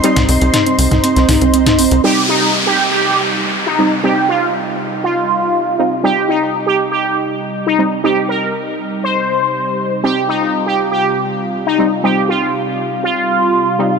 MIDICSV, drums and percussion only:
0, 0, Header, 1, 2, 480
1, 0, Start_track
1, 0, Key_signature, -3, "minor"
1, 0, Tempo, 500000
1, 36, Time_signature, 4, 2, 24, 8
1, 13430, End_track
2, 0, Start_track
2, 0, Title_t, "Drums"
2, 35, Note_on_c, 9, 42, 61
2, 131, Note_off_c, 9, 42, 0
2, 158, Note_on_c, 9, 38, 107
2, 158, Note_on_c, 9, 42, 80
2, 158, Note_on_c, 9, 45, 101
2, 254, Note_off_c, 9, 38, 0
2, 254, Note_off_c, 9, 42, 0
2, 254, Note_off_c, 9, 45, 0
2, 276, Note_on_c, 9, 46, 100
2, 372, Note_off_c, 9, 46, 0
2, 398, Note_on_c, 9, 42, 61
2, 494, Note_off_c, 9, 42, 0
2, 515, Note_on_c, 9, 38, 120
2, 515, Note_on_c, 9, 42, 77
2, 515, Note_on_c, 9, 45, 87
2, 611, Note_off_c, 9, 38, 0
2, 611, Note_off_c, 9, 42, 0
2, 611, Note_off_c, 9, 45, 0
2, 638, Note_on_c, 9, 42, 48
2, 734, Note_off_c, 9, 42, 0
2, 755, Note_on_c, 9, 42, 69
2, 755, Note_on_c, 9, 46, 95
2, 851, Note_off_c, 9, 42, 0
2, 851, Note_off_c, 9, 46, 0
2, 878, Note_on_c, 9, 38, 38
2, 878, Note_on_c, 9, 42, 42
2, 878, Note_on_c, 9, 45, 89
2, 974, Note_off_c, 9, 38, 0
2, 974, Note_off_c, 9, 42, 0
2, 974, Note_off_c, 9, 45, 0
2, 995, Note_on_c, 9, 42, 88
2, 1091, Note_off_c, 9, 42, 0
2, 1118, Note_on_c, 9, 38, 38
2, 1118, Note_on_c, 9, 42, 47
2, 1214, Note_off_c, 9, 38, 0
2, 1214, Note_off_c, 9, 42, 0
2, 1235, Note_on_c, 9, 38, 106
2, 1235, Note_on_c, 9, 42, 82
2, 1236, Note_on_c, 9, 45, 95
2, 1236, Note_on_c, 9, 46, 110
2, 1331, Note_off_c, 9, 38, 0
2, 1331, Note_off_c, 9, 42, 0
2, 1332, Note_off_c, 9, 45, 0
2, 1332, Note_off_c, 9, 46, 0
2, 1358, Note_on_c, 9, 42, 47
2, 1454, Note_off_c, 9, 42, 0
2, 1475, Note_on_c, 9, 42, 61
2, 1571, Note_off_c, 9, 42, 0
2, 1598, Note_on_c, 9, 38, 107
2, 1598, Note_on_c, 9, 42, 47
2, 1598, Note_on_c, 9, 45, 95
2, 1694, Note_off_c, 9, 38, 0
2, 1694, Note_off_c, 9, 42, 0
2, 1694, Note_off_c, 9, 45, 0
2, 1715, Note_on_c, 9, 46, 89
2, 1811, Note_off_c, 9, 46, 0
2, 1838, Note_on_c, 9, 42, 63
2, 1934, Note_off_c, 9, 42, 0
2, 13430, End_track
0, 0, End_of_file